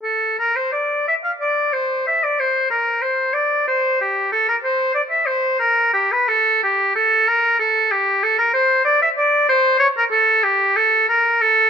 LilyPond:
\new Staff \with { instrumentName = "Oboe" } { \time 3/4 \key c \mixolydian \tempo 4 = 93 a'8 bes'16 c''16 d''8 e''16 f''16 d''8 c''8 | e''16 d''16 c''8 bes'8 c''8 d''8 c''8 | g'8 a'16 bes'16 c''8 d''16 e''16 c''8 bes'8 | g'16 b'16 a'8 g'8 a'8 bes'8 a'8 |
g'8 a'16 bes'16 c''8 d''16 e''16 d''8 c''8 | des''16 bes'16 a'8 g'8 a'8 bes'8 a'8 | }